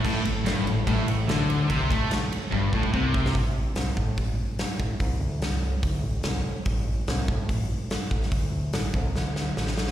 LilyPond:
<<
  \new Staff \with { instrumentName = "Distorted electric guitar" } { \clef bass \time 4/4 \key a \minor \tempo 4 = 145 a,8 a,8 g,8 a,8 a,8 a,8 d4 | c8 a8 r4 g,8 a,8 c4 | r1 | r1 |
r1 | r1 | }
  \new Staff \with { instrumentName = "Overdriven electric guitar" } { \clef bass \time 4/4 \key a \minor a,8 a,8 g,8 a,8 a,8 a,8 d4 | c8 a8 r4 g,8 a,8 c4 | r1 | r1 |
r1 | r1 | }
  \new Staff \with { instrumentName = "Overdriven electric guitar" } { \clef bass \time 4/4 \key a \minor a,8 a,8 g,8 a,8 a,8 a,8 d4 | c8 a8 r4 g,8 a,8 c4 | r1 | r1 |
r1 | r1 | }
  \new Staff \with { instrumentName = "Fingered electric bass" } { \clef bass \time 4/4 \key a \minor a,,8 a,,8 g,,8 a,,8 a,,8 a,,8 d,4 | c,8 a,8 r4 g,,8 a,,8 c,4 | a,,4 c,8 a,8 a,,8 r4 a,,8 | c,8 d,8 c,4 d,8 a,,8 c,8 r8 |
a,,4 c,8 a,8 a,,8 r4 a,,8 | d,4 a,,8 c,8 d,4 a,,4 | }
  \new DrumStaff \with { instrumentName = "Drums" } \drummode { \time 4/4 <cymc bd>8 cymr8 <cymr sn>8 cymr8 <bd cymr>8 cymr8 <cymr sn>8 cymr8 | <bd cymr>8 <bd cymr>8 <cymr sn>8 cymr8 bd8 bd16 bd16 bd8 bd16 sn16 | <hho bd>4 <hho sn>8 bd8 <hho bd>4 <hho sn>8 bd8 | <hho bd>4 <hho sn>16 sn8. <hho bd>4 <hho sn>4 |
<hho bd>4 <hho sn>8 bd8 <hho bd>4 <hho sn>8 bd16 sn16 | <hho bd>4 <hho sn>8 bd8 sn8 sn8 sn16 sn16 sn16 sn16 | }
>>